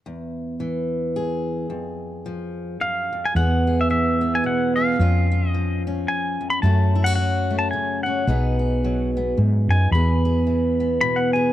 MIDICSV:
0, 0, Header, 1, 4, 480
1, 0, Start_track
1, 0, Key_signature, 4, "major"
1, 0, Tempo, 547945
1, 52, Time_signature, 3, 2, 24, 8
1, 10099, End_track
2, 0, Start_track
2, 0, Title_t, "Pedal steel guitar"
2, 0, Program_c, 0, 26
2, 2465, Note_on_c, 0, 77, 76
2, 2851, Note_off_c, 0, 77, 0
2, 2852, Note_on_c, 0, 80, 82
2, 2944, Note_off_c, 0, 80, 0
2, 2947, Note_on_c, 0, 78, 85
2, 3321, Note_off_c, 0, 78, 0
2, 3335, Note_on_c, 0, 76, 61
2, 3413, Note_off_c, 0, 76, 0
2, 3423, Note_on_c, 0, 76, 68
2, 3810, Note_off_c, 0, 76, 0
2, 3812, Note_on_c, 0, 80, 70
2, 3897, Note_off_c, 0, 80, 0
2, 3911, Note_on_c, 0, 78, 70
2, 4163, Note_off_c, 0, 78, 0
2, 4168, Note_on_c, 0, 77, 62
2, 4816, Note_off_c, 0, 77, 0
2, 4816, Note_on_c, 0, 75, 62
2, 5096, Note_off_c, 0, 75, 0
2, 5329, Note_on_c, 0, 80, 73
2, 5692, Note_off_c, 0, 80, 0
2, 5696, Note_on_c, 0, 83, 83
2, 5796, Note_off_c, 0, 83, 0
2, 5800, Note_on_c, 0, 81, 75
2, 6168, Note_on_c, 0, 78, 74
2, 6199, Note_off_c, 0, 81, 0
2, 6258, Note_off_c, 0, 78, 0
2, 6268, Note_on_c, 0, 78, 69
2, 6642, Note_off_c, 0, 78, 0
2, 6645, Note_on_c, 0, 81, 69
2, 6749, Note_off_c, 0, 81, 0
2, 6752, Note_on_c, 0, 80, 69
2, 7033, Note_off_c, 0, 80, 0
2, 7037, Note_on_c, 0, 78, 60
2, 7970, Note_off_c, 0, 78, 0
2, 8502, Note_on_c, 0, 80, 75
2, 8685, Note_off_c, 0, 80, 0
2, 8694, Note_on_c, 0, 83, 77
2, 9619, Note_off_c, 0, 83, 0
2, 9646, Note_on_c, 0, 83, 77
2, 9777, Note_on_c, 0, 78, 68
2, 9794, Note_off_c, 0, 83, 0
2, 9924, Note_off_c, 0, 78, 0
2, 9928, Note_on_c, 0, 80, 72
2, 10099, Note_off_c, 0, 80, 0
2, 10099, End_track
3, 0, Start_track
3, 0, Title_t, "Steel-string acoustic guitar"
3, 0, Program_c, 1, 25
3, 53, Note_on_c, 1, 40, 53
3, 525, Note_on_c, 1, 52, 52
3, 1017, Note_on_c, 1, 68, 56
3, 1484, Note_off_c, 1, 40, 0
3, 1487, Note_on_c, 1, 41, 54
3, 1490, Note_off_c, 1, 52, 0
3, 1977, Note_on_c, 1, 53, 53
3, 2451, Note_off_c, 1, 41, 0
3, 2459, Note_on_c, 1, 42, 55
3, 2485, Note_off_c, 1, 68, 0
3, 2734, Note_off_c, 1, 42, 0
3, 2738, Note_on_c, 1, 41, 45
3, 2912, Note_off_c, 1, 53, 0
3, 2937, Note_off_c, 1, 41, 0
3, 2942, Note_on_c, 1, 40, 50
3, 2946, Note_on_c, 1, 59, 44
3, 2947, Note_on_c, 1, 68, 54
3, 3214, Note_off_c, 1, 68, 0
3, 3217, Note_on_c, 1, 68, 48
3, 3418, Note_on_c, 1, 52, 46
3, 3679, Note_off_c, 1, 59, 0
3, 3689, Note_on_c, 1, 59, 41
3, 3888, Note_on_c, 1, 47, 51
3, 4165, Note_off_c, 1, 68, 0
3, 4175, Note_on_c, 1, 68, 48
3, 4349, Note_off_c, 1, 59, 0
3, 4351, Note_off_c, 1, 68, 0
3, 4372, Note_off_c, 1, 47, 0
3, 4373, Note_off_c, 1, 40, 0
3, 4376, Note_on_c, 1, 41, 60
3, 4377, Note_off_c, 1, 52, 0
3, 4386, Note_on_c, 1, 61, 45
3, 4391, Note_on_c, 1, 65, 56
3, 4646, Note_off_c, 1, 65, 0
3, 4657, Note_on_c, 1, 65, 48
3, 4857, Note_on_c, 1, 53, 50
3, 5139, Note_off_c, 1, 61, 0
3, 5142, Note_on_c, 1, 61, 45
3, 5602, Note_off_c, 1, 41, 0
3, 5612, Note_on_c, 1, 41, 50
3, 5792, Note_off_c, 1, 53, 0
3, 5792, Note_off_c, 1, 65, 0
3, 5795, Note_off_c, 1, 61, 0
3, 5802, Note_off_c, 1, 41, 0
3, 5805, Note_on_c, 1, 42, 59
3, 5815, Note_on_c, 1, 57, 49
3, 5824, Note_on_c, 1, 61, 42
3, 5829, Note_on_c, 1, 66, 49
3, 6088, Note_off_c, 1, 66, 0
3, 6092, Note_on_c, 1, 64, 50
3, 6187, Note_off_c, 1, 64, 0
3, 6187, Note_on_c, 1, 66, 43
3, 6290, Note_on_c, 1, 54, 59
3, 6564, Note_off_c, 1, 57, 0
3, 6575, Note_on_c, 1, 57, 42
3, 6773, Note_on_c, 1, 49, 51
3, 7050, Note_off_c, 1, 61, 0
3, 7061, Note_on_c, 1, 61, 46
3, 7226, Note_off_c, 1, 42, 0
3, 7228, Note_off_c, 1, 54, 0
3, 7230, Note_off_c, 1, 49, 0
3, 7234, Note_off_c, 1, 61, 0
3, 7248, Note_on_c, 1, 47, 52
3, 7251, Note_off_c, 1, 66, 0
3, 7253, Note_off_c, 1, 57, 0
3, 7257, Note_on_c, 1, 59, 52
3, 7262, Note_on_c, 1, 63, 45
3, 7269, Note_on_c, 1, 68, 56
3, 7523, Note_off_c, 1, 68, 0
3, 7527, Note_on_c, 1, 68, 43
3, 7748, Note_on_c, 1, 54, 51
3, 8027, Note_off_c, 1, 59, 0
3, 8030, Note_on_c, 1, 59, 41
3, 8211, Note_off_c, 1, 47, 0
3, 8212, Note_on_c, 1, 42, 49
3, 8498, Note_off_c, 1, 63, 0
3, 8512, Note_on_c, 1, 63, 43
3, 8667, Note_off_c, 1, 68, 0
3, 8669, Note_off_c, 1, 42, 0
3, 8677, Note_off_c, 1, 54, 0
3, 8680, Note_off_c, 1, 63, 0
3, 8708, Note_on_c, 1, 40, 55
3, 8711, Note_off_c, 1, 59, 0
3, 8715, Note_on_c, 1, 59, 42
3, 8717, Note_on_c, 1, 68, 50
3, 8969, Note_off_c, 1, 68, 0
3, 8980, Note_on_c, 1, 68, 51
3, 9170, Note_on_c, 1, 52, 50
3, 9458, Note_off_c, 1, 59, 0
3, 9462, Note_on_c, 1, 59, 37
3, 9656, Note_on_c, 1, 47, 53
3, 9937, Note_off_c, 1, 68, 0
3, 9947, Note_on_c, 1, 68, 49
3, 10099, Note_off_c, 1, 40, 0
3, 10099, Note_off_c, 1, 47, 0
3, 10099, Note_off_c, 1, 52, 0
3, 10099, Note_off_c, 1, 59, 0
3, 10099, Note_off_c, 1, 68, 0
3, 10099, End_track
4, 0, Start_track
4, 0, Title_t, "Fretless electric bass"
4, 0, Program_c, 2, 35
4, 2935, Note_on_c, 2, 40, 66
4, 3860, Note_off_c, 2, 40, 0
4, 4374, Note_on_c, 2, 41, 69
4, 5299, Note_off_c, 2, 41, 0
4, 5807, Note_on_c, 2, 42, 71
4, 6736, Note_off_c, 2, 42, 0
4, 7248, Note_on_c, 2, 35, 75
4, 8176, Note_off_c, 2, 35, 0
4, 8215, Note_on_c, 2, 44, 63
4, 8466, Note_off_c, 2, 44, 0
4, 8481, Note_on_c, 2, 42, 61
4, 8667, Note_off_c, 2, 42, 0
4, 8684, Note_on_c, 2, 40, 64
4, 9614, Note_off_c, 2, 40, 0
4, 10099, End_track
0, 0, End_of_file